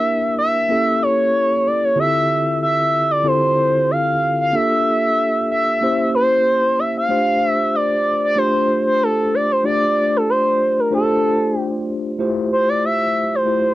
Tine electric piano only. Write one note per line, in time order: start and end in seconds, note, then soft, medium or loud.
0.00 0.26 A#3 medium
0.00 0.26 D4 medium
0.00 0.27 E4 medium
0.00 0.27 G4 medium
0.00 0.30 A#4 medium
0.69 1.54 A#3 medium
0.69 1.55 C#4 medium
0.69 1.55 E4 medium
0.69 1.55 G4 medium
0.69 1.55 A4 medium
1.96 2.82 D3 medium
1.96 2.82 C4 medium
1.96 2.82 E4 medium
1.96 2.82 F4 medium
1.96 2.82 G4 medium
1.96 2.82 A4 medium
3.24 4.10 D3 medium
3.24 4.10 C4 medium
3.24 4.10 E4 medium
3.24 4.10 F4 medium
3.24 4.10 G4 medium
3.24 4.10 A4 medium
4.53 5.38 A#3 medium
4.53 5.38 D4 medium
4.53 5.39 F4 medium
4.53 5.39 G4 medium
4.53 5.39 A4 medium
5.81 6.66 A#3 medium
5.81 6.67 C#4 medium
5.81 6.67 E4 medium
5.81 6.67 G4 medium
5.81 6.67 C5 medium
7.09 7.94 A3 medium
7.09 7.94 D4 medium
7.09 7.94 F4 medium
7.09 7.95 G4 medium
7.09 7.95 C5 medium
8.36 9.21 A3 medium
8.36 9.22 D4 medium
8.36 9.22 F4 medium
8.36 9.22 G4 medium
8.36 9.22 C5 medium
9.64 10.49 A3 medium
9.64 10.49 D4 medium
9.64 10.49 F4 medium
9.64 10.50 G4 medium
9.64 10.50 D5 medium
10.91 11.76 A3 medium
10.91 11.77 D4 medium
10.91 11.77 F4 medium
10.91 11.77 G4 medium
10.91 11.77 C5 medium
12.19 13.04 A3 medium
12.19 13.04 E4 medium
12.19 13.05 F4 medium
12.19 13.05 G4 medium
12.19 13.05 C5 medium
13.46 13.74 A3 medium
13.46 13.74 E4 medium
13.46 13.74 F4 medium
13.46 13.74 G4 medium
13.46 13.74 C5 medium